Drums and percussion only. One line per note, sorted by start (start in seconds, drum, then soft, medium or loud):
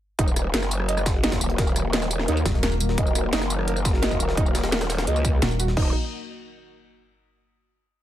0.19 kick loud
0.19 closed hi-hat loud
0.19 closed hi-hat medium
0.28 tambourine soft
0.36 cross-stick medium
0.36 closed hi-hat medium
0.36 tambourine medium
0.54 snare loud
0.54 closed hi-hat medium
0.54 closed hi-hat loud
0.62 cross-stick soft
0.62 snare medium
0.62 tambourine soft
0.71 closed hi-hat medium
0.71 tambourine medium
0.80 cross-stick soft
0.89 closed hi-hat medium
0.89 closed hi-hat loud
0.97 cross-stick soft
0.97 tambourine soft
1.06 kick loud
1.06 snare loud
1.06 closed hi-hat medium
1.06 tambourine medium
1.24 snare loud
1.24 closed hi-hat medium
1.24 closed hi-hat loud
1.32 kick medium
1.32 snare loud
1.32 closed hi-hat medium
1.32 tambourine soft
1.41 closed hi-hat medium
1.41 tambourine medium
1.50 closed hi-hat medium
1.58 kick loud
1.58 snare loud
1.58 closed hi-hat medium
1.58 closed hi-hat loud
1.67 tambourine soft
1.76 cross-stick soft
1.76 closed hi-hat medium
1.76 tambourine medium
1.93 snare loud
1.93 closed hi-hat medium
1.93 closed hi-hat loud
2.02 cross-stick soft
2.02 snare medium
2.02 tambourine soft
2.11 closed hi-hat medium
2.11 tambourine medium
2.19 cross-stick soft
2.19 snare soft
2.28 closed hi-hat medium
2.28 closed hi-hat loud
2.37 tambourine soft
2.46 kick loud
2.46 snare loud
2.46 closed hi-hat medium
2.46 tambourine medium
2.54 snare soft
2.63 snare loud
2.63 closed hi-hat medium
2.72 tambourine soft
2.80 closed hi-hat medium
2.80 tambourine medium
2.89 snare soft
2.98 kick loud
2.98 closed hi-hat loud
3.07 tambourine soft
3.15 cross-stick soft
3.15 closed hi-hat medium
3.15 tambourine medium
3.33 snare loud
3.33 closed hi-hat medium
3.41 cross-stick soft
3.41 snare medium
3.41 tambourine soft
3.50 closed hi-hat medium
3.50 tambourine medium
3.59 cross-stick soft
3.68 closed hi-hat loud
3.68 closed hi-hat medium
3.76 tambourine soft
3.85 kick loud
3.85 snare medium
3.85 closed hi-hat medium
3.85 tambourine medium
3.94 snare soft
4.02 snare loud
4.02 closed hi-hat medium
4.11 kick medium
4.11 tambourine soft
4.20 closed hi-hat medium
4.20 tambourine medium
4.29 snare medium
4.37 kick loud
4.37 closed hi-hat medium
4.46 tambourine soft
4.55 cross-stick soft
4.55 snare loud
4.55 closed hi-hat medium
4.55 tambourine medium
4.64 snare loud
4.64 closed hi-hat medium
4.72 snare loud
4.72 closed hi-hat medium
4.81 cross-stick soft
4.81 snare loud
4.81 closed hi-hat medium
4.81 tambourine soft
4.90 snare loud
4.90 closed hi-hat medium
4.90 tambourine medium
4.98 cross-stick soft
4.98 snare loud
4.98 snare soft
4.98 closed hi-hat medium
5.07 closed hi-hat medium
5.16 tambourine soft
5.25 kick loud
5.25 closed hi-hat medium
5.25 tambourine medium
5.42 snare loud
5.42 closed hi-hat medium
5.51 tambourine soft
5.60 closed hi-hat medium
5.60 tambourine medium
5.68 snare medium
5.77 kick loud
5.77 crash medium